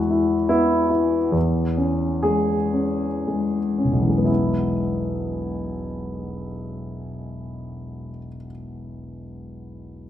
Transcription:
Already playing: E2 G#3 E4 F#4
0.10 E4
0.49 B3 E4
0.90 E4
1.32 E2
1.77 C#4
2.23 G#3 G#4
2.74 C#4
3.28 G#3
3.78 C#4
3.84 E1
3.93 B1
4.01 E3
4.10 G#3
4.18 B3
4.25 E4

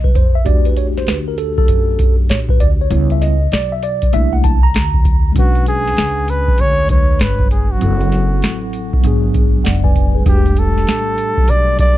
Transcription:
Already playing: C2
0.04 B4, kick
0.15 F2 C5, kick, closed hi-hat
0.35 E5
0.45 E2 A3 D4 F#4 G4 D5, kick, closed hi-hat
0.65 B4, closed hi-hat
0.77 C#5, closed hi-hat
0.98 C5, snare
1.07 D2 B4, snare, closed hi-hat
1.28 A#4
1.38 A4, closed hi-hat
1.58 A4, kick
1.68 F#2, closed hi-hat
1.99 kick, closed hi-hat
2.29 A2 C#5, snare, closed hi-hat
2.49 B4, kick
2.60 D2 D5, closed hi-hat
2.81 C#5
2.90 C#2 G3 B3 E4, closed hi-hat
3.10 E5, closed hi-hat
3.22 D#5, snare, closed hi-hat
3.52 B1 D5, snare, closed hi-hat
3.72 E5
3.83 D5, closed hi-hat
4.02 kick, closed hi-hat
4.13 C2 A3 A#3 D4 E4 E5, closed hi-hat
4.33 F#5
4.44 A5, kick, closed hi-hat
4.63 A#5
4.74 D2, snare, closed hi-hat
4.94 kick
5.05 kick, closed hi-hat
5.32 B1 G#3 C#4, kick, closed hi-hat
5.37 D4 F#4 B4
5.55 closed hi-hat
5.66 G#4, closed hi-hat
5.88 snare
5.97 C#2, snare, closed hi-hat
6.28 B4, closed hi-hat
6.48 muted upright bass stroke, kick
6.58 D2 C#5, closed hi-hat
6.87 G#3 D4 B4 C#5, kick, closed hi-hat
7.19 G1 B4, snare, closed hi-hat
7.39 kick
7.51 G#4, closed hi-hat
7.72 F#4
7.77 F#3 C4, closed hi-hat
7.81 F#1 E4 A4
8.01 closed hi-hat
8.12 snare, closed hi-hat
8.42 A1, snare, closed hi-hat
8.73 closed hi-hat
8.93 muted upright bass stroke, kick
9.00 G#1 F#3 B3, closed hi-hat
9.04 D4 G#4
9.34 kick, closed hi-hat
9.64 F1 D5 F#5, snare, closed hi-hat
9.84 B4 D5 G#5, kick
9.95 kick, closed hi-hat
10.14 G#4 B4
10.22 G3 A3, kick, closed hi-hat
10.26 E1 D4 F#4 G4
10.35 G4
10.46 closed hi-hat
10.57 A4, closed hi-hat
10.78 snare
10.87 A1, snare, closed hi-hat
11.18 closed hi-hat
11.38 muted upright bass stroke, kick
11.48 B1 D5, closed hi-hat
11.79 D5, kick, closed hi-hat

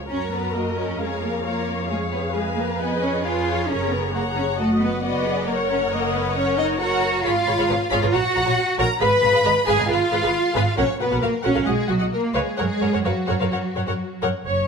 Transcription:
Already playing: F4 C#5
0.00 F3
0.09 F#2 C#4 F#4 A#4 C#5 A#5
0.32 B3 B4
0.55 A#3 A#4 D#5
0.77 C#4 C#5
0.99 F2 G#3 G#4 C#5 F5
1.22 A#3 A#4
1.45 A#3 F4 A#4 C#5
1.89 G#3 G#4 C#5 F5
2.12 B3 B4
2.34 G#3 G#4 B4 G#5
2.57 A#3 A#4
2.79 B3 G#4 B4 D#5 G#5
3.02 C#4 C#5
3.24 F4 C#5 F5 G#5
3.47 C#5
3.69 F#1 C#4 A#4 C#5 A#5
3.92 B3 B4
4.14 A#3 A#4 C#5 F#5 A#5
4.35 C#4 C#5
4.58 A3 F#4 A4 D#5 F#5
4.81 B3 B4
5.02 B3 F#4 B4 D5 D#5
5.26 G#4
5.48 A#3 A#4 C#5 F#5
5.70 C#4 C#5
5.92 A#3 A#4 D#5
6.14 B3 B4
6.36 C#4 A#4 C#5
6.58 D#4 D#5
6.79 F#4 A#4 C#5 F#5 A#5
7.24 G#1 F4 G#4 C#5 F5 B5
7.47 G#1 G#4 C#5 B5
7.58 G#1 G#4 C#5 B5
7.69 G#1 G#4 B4 C#5 A#5
7.91 G#1 F4 G#4 C#5 F5 B5
8.02 G#1 G#4 B4 C#5 A#5
8.12 A#1 F#4 C#5 F#5 A#5
8.35 A#1 F#4 C#5 F#5 A#5
8.46 A#1 F#4 C#5 F#5 A#5
8.78 A#1 F#4 A#4 C#5 F#5 A#5
9.01 G#1 G#4 B4 F5 B5
9.22 G#1 G#4 B4 F5 B5
9.32 G#1 G#4 B4 F5 B5
9.45 G#1 G#4 B4 D#5 A#5
9.66 G#1 G#4 B4 F5 G#5 B5
9.78 G#1 G#4 B4 D#5 A#5
9.88 G#1 F4 G#4 B4 F5 B5
10.12 G#1 G#4 B4 F5 B5
10.23 G#1 G#4 B4 F5 B5
10.55 G#1 G#4 B4 F5 B5
10.77 A#1 C#4 F#4 A#4 C#5 F#5
10.99 A#1 B3 F#4 A#4 B4 F#5
11.10 A#1 F#4 A#4 F#5
11.22 A#1 A#3 F#4 A#4 F5
11.43 A#1 C#4 F#4 A#4 C#5 F#5
11.54 A#1 F#4 A#4 F5
11.65 B1 G#3 F#4 G#4 D#5 F#5
11.87 B1 F#3 F#4 D#5 F#5
11.99 B1 F#4 D#5 F#5
12.12 A#3 A#4
12.34 C#2 G#3 G#4 B4 C#5 F5
12.57 F#2 G#3 G#4 A#4 C#5 F#5
12.81 F#2 A#4 C#5 F#5
12.93 F#2 A#4 C#5 F#5
13.05 F#2 F#3 F#4 A#4 B4 C#5 F5
13.28 F#2 A#4 C#5 F#5
13.40 F#2 A#4 B4 C#5 F5
13.52 F#2 A#4 C#5 F#5
13.76 F#2 A#4 C#5 F#5
13.87 F#2 A#4 C#5 F#5
14.22 F#2 A#4 C#5 F#5
14.45 F#1 C#4 C#5

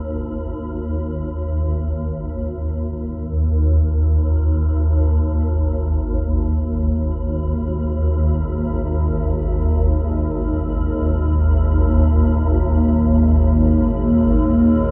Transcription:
Already playing: G#1 D#2
2.69 G#1 D#2 A#3
2.95 D#4
5.51 G#4
7.54 D#5

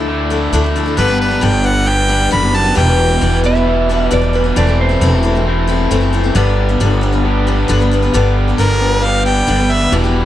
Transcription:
Already playing: D2 A4
0.00 D4 E4
0.07 D3 A3 D4 E4
0.30 A3 D4 E4 A4
0.53 D2 D3 A3 D4 E4 A4
0.64 D4 E4 A4
0.76 A3 D4 E4 A4
0.86 D4 E4 A4
0.96 G1 G2 D3 G3 B3 D4 G4 B4
1.08 G3 B3 D4 B4
1.21 B4
1.31 G3 B3 D4 B4
1.41 G1 G2 D3 G3 B3 D4 B4 G5
1.64 G3 B3 D4 B4 F#5
1.86 G2 D3 G3 B3 D4 G4 G5
2.08 G3 B3 D4 B4
2.31 F#1 G2 D3 G3 B3 D4 B4 B5
2.42 G3 B3 D4 B4
2.54 G3 B3 D4 B4 A5
2.64 G3 B3 D4 B4
2.75 E1 E2 B2 E3 G3 B3 D4 E4 B4 G5
3.09 B3 D4 B4
3.21 E1 E3 G3 B3 D4 B4
3.44 G3 B3 D4 B4 E5
3.55 B3 D4 B4
3.66 E2 B2 E3 G3 B3 E4
3.89 G3 B3 D4 B4
4.11 E1 E3 G3 B3 D4 B4 D5
4.22 B3 D4 B4
4.33 G3 B3 D4 B4
4.44 B3 D4 B4
4.56 E1 E3 A3 C4 E4 A4 D5
4.67 C4 E4 A4
4.81 C5
4.89 C4 E4 A4
5.01 E1 E3 A3 C4 E4 A4
5.23 A3 C4 E4 A4
5.35 C4 E4 A4
5.45 E3 A3 C4 E4
5.68 A3 C4 E4 A4
5.91 F#1 E3 A3 C4 E4 A4
6.01 C4 E4 A4
6.13 A3 C4 E4 A4
6.24 C4 E4 A4
6.34 G1 G2 D3 G3 B3 D4 G4 B4
6.69 G3 B3 D4 B4
6.80 G1 G2 D3 G3 B3 D4 B4
7.01 G3 B3 D4 B4
7.13 G3 B3 D4 B4
7.24 G2 D3 G3 B3 D4 G4
7.47 G3 B3 D4 B4
7.68 G1 G2 D3 G3 B3 D4 B4
7.80 G3 B3 D4 B4
7.91 G3 B3 D4 B4
8.02 G3 B3 D4 B4
8.12 G1 G2 D3 G3 B3 D4 G4 B4
8.48 G3 B3 D4 B4
8.58 G1 G2 D3 G3 B3 D4 A#4 B4
8.80 G3 B3 D4 B4
9.02 G2 D3 G3 B3 D4 G4 F5
9.25 G3 B3 D4 B4 G5
9.47 G1 G2 D3 G3 B3 D4 B4
9.59 G3 B3 D4 B4
9.70 G3 B3 D4 B4 E5
9.80 G3 B3 D4 B4
9.91 E1 E2 B2 E3 G3 B3 D4 E4 G4
10.04 B3 D4 G4

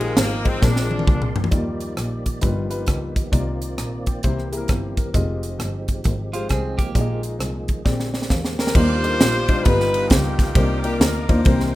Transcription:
Already playing: A#1 A#2 D#3 F3 G#3 A#4 F5 D#6
0.00 G#3 D#4 F4 G4, ride
0.17 G#1 A#3, snare, ride
0.45 G#3 C4 D#4 F4 C5, kick, ride
0.60 A#1 A#2 F3 G#3 C4 D4 A#4 D5 C6, kick, snare
0.76 snare
0.91 high tom
0.99 high tom
1.07 C2, kick, mid tom
1.22 mid tom
1.36 floor tom
1.44 floor tom
1.51 D#2 D#3 F3 G3 A#3 D#4 F4 G4 D5, kick, closed hi-hat
1.80 closed hi-hat
1.97 A#1, cross-stick, closed hi-hat
2.26 kick, closed hi-hat
2.41 G1 G2 F3 G3 B3 D#4 F4 B4, kick, closed hi-hat
2.70 G3 D#4 F4 B4, closed hi-hat
2.87 C#2 B4, kick, cross-stick, closed hi-hat
3.16 D#5, kick, closed hi-hat
3.32 C2 C3 D#3 A#3 C4 D#4 F4 D5, kick, closed hi-hat
3.62 closed hi-hat
3.78 A#1 A#5, cross-stick, closed hi-hat
4.06 G5, kick, closed hi-hat
4.23 C2 C3 E3 G3 A#3 E4 G4 C5, kick, closed hi-hat
4.38 cross-stick
4.52 A#3 E4 G4 G#4, closed hi-hat
4.57 A#4
4.68 G1 C5, kick, cross-stick, closed hi-hat
4.97 A#4, kick, closed hi-hat
5.13 F1 F3 G#3 D#4 F4 G4 D#5, kick, closed hi-hat
5.43 closed hi-hat
5.59 G1, cross-stick, closed hi-hat
5.88 kick, closed hi-hat
6.04 G#1, kick, closed hi-hat
6.33 G#3 F4 G4 C5, closed hi-hat
6.49 C2 C4 G#4, kick, cross-stick, closed hi-hat
6.78 A#3 G4, kick, cross-stick, closed hi-hat
6.95 A#1 A#2 A#3 F4 G#4 D5, kick, closed hi-hat
7.00 D#5
7.23 closed hi-hat
7.40 C2, cross-stick, closed hi-hat
7.68 kick, closed hi-hat
7.85 A#1 A#2 D3 C4 G4 G#4 D5, kick, snare
8.00 snare
8.13 D5, snare
8.22 snare
8.29 E2 F5, kick, snare
8.45 snare
8.58 A#4 G5, snare
8.67 snare
8.74 D#2 D#3 G3 D4 D#4 F4 G4 A#4 C5 D5 F5 D6, kick, crash
9.04 G3 D4 D#4 F4 A4, ride
9.09 A#4
9.19 A#1, snare, ride
9.48 G3 D4 D#4 F4 C5, kick, ride
9.64 G1 G2 G3 A#3 D#4 F4 G4 B4 D#5 G5 A#5, kick, ride
9.70 B3
9.80 snare
9.94 ride
10.09 C#2 A#3 B3 G4, kick, snare, ride
10.39 kick, snare, ride
10.54 C2 C3 A#3 D4 D#4 F4 G4 A#4 C5 D5 D6, kick, ride
10.82 A#3 D#4 F4 G4 A#4 D5, ride
10.99 D2 D4 D#4 A#4, snare, ride
11.29 D#2 A#3 D4 D#4 F4 C5, kick, ride
11.45 C2 C3 E3 A#3 C4 G4 C5 G5 C6, kick, ride
11.60 snare

